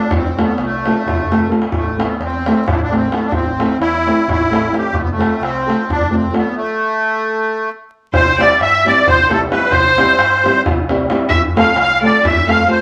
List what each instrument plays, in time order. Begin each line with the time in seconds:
Already playing: accordion D4
0.01 darbuka tek
0.11 picked electric bass F1, darbuka dum
0.16 accordion C4
0.37 nylon-string guitar A3 C4 F4 A4, darbuka tek
0.43 accordion B3
0.58 picked electric bass C2, darbuka tek
0.64 accordion A3
0.72 darbuka tek
0.86 nylon-string guitar A3 C4 F4 A4, darbuka tek
1.06 picked electric bass F1, darbuka dum
1.30 nylon-string guitar A3 C4 F4 A4, darbuka tek
1.42 darbuka dum
1.49 nylon-string guitar A3 C4 F4 A4, darbuka tek
1.62 darbuka tek
1.72 picked electric bass A1, accordion A3, darbuka dum
1.86 darbuka tek
1.97 nylon-string guitar A3 C4 E4 A4, darbuka tek
2.02 accordion B3
2.20 picked electric bass E2, accordion C4, darbuka tek
2.46 nylon-string guitar A3 C4 E4 A4, darbuka tek
2.67 picked electric bass A1, accordion D4, darbuka dum
2.74 accordion E4
2.83 accordion D4
2.91 nylon-string guitar A3 C4 E4 A4, accordion C4, darbuka tek
3.11 nylon-string guitar A3 C4 E4 A4, accordion B3, darbuka tek
3.23 accordion D4, darbuka tek
3.32 picked electric bass A1, accordion C4, darbuka dum
3.46 darbuka tek
3.58 nylon-string guitar A3 C4 E4 A4, darbuka tek
3.79 picked electric bass E2, accordion E4, darbuka tek
4.06 nylon-string guitar A3 C4 E4 A4, darbuka tek
4.28 picked electric bass A1, accordion E4, darbuka dum
4.51 nylon-string guitar A3 C4 E4 A4, darbuka tek
4.71 nylon-string guitar A3 C4 E4 A4, darbuka tek
4.77 accordion G4
4.83 darbuka tek
4.93 picked electric bass F1, accordion A3, darbuka dum
5.02 accordion B3
5.07 accordion A3, darbuka tek
5.17 nylon-string guitar A3 C4 F4 A4, darbuka tek
5.41 picked electric bass C2, accordion C4, darbuka tek
5.66 nylon-string guitar A3 C4 F4 A4, darbuka tek
5.89 picked electric bass F1, accordion D4, darbuka dum
6.10 nylon-string guitar A3 C4 F4 A4
6.15 accordion C4
6.31 nylon-string guitar A3 C4 F4 A4, accordion B3, darbuka tek
6.45 darbuka tek
6.55 accordion A3
8.13 picked electric bass C2, violin C5, accordion C5, darbuka dum
8.37 nylon-string guitar G3 C4 E4 G4, violin D5, darbuka tek
8.41 accordion D5
8.51 darbuka tek
8.60 picked electric bass G2, violin E5, accordion E5, darbuka tek
8.85 nylon-string guitar G3 C4 E4 G4, accordion D5, violin D5, darbuka tek
8.98 darbuka tek
9.07 picked electric bass C2, violin C5, accordion C5, darbuka dum
9.29 nylon-string guitar G3 C4 E4 G4, violin A4, accordion A4, darbuka tek
9.49 nylon-string guitar G3 C4 E4 G4, violin B4, accordion B4, darbuka tek
9.68 picked electric bass C2, violin C5, accordion C5
9.72 darbuka dum
9.97 nylon-string guitar G3 C4 E4 G4, darbuka tek
10.08 darbuka tek
10.18 picked electric bass G2, darbuka tek
10.44 nylon-string guitar G3 C4 E4 G4, darbuka tek
10.55 darbuka tek
10.66 picked electric bass C2, darbuka dum
10.89 nylon-string guitar G3 C4 E4 G4, darbuka tek
11.09 nylon-string guitar G3 C4 E4 G4, darbuka tek
11.29 picked electric bass F2, violin E5, accordion E5, darbuka dum
11.55 nylon-string guitar A3 C4 F4 A4, violin F5, darbuka tek
11.59 accordion F5
11.66 darbuka tek
11.76 picked electric bass C2, violin F5, accordion F5, darbuka tek
12.01 nylon-string guitar A3 C4 F4 A4, violin D5, darbuka tek
12.06 accordion D5
12.15 darbuka tek
12.24 picked electric bass F2, violin E5, accordion E5, darbuka dum
12.47 nylon-string guitar A3 C4 F4 A4, violin F5, accordion F5, darbuka tek
12.67 nylon-string guitar A3 C4 F4 A4, violin C5
12.71 accordion C5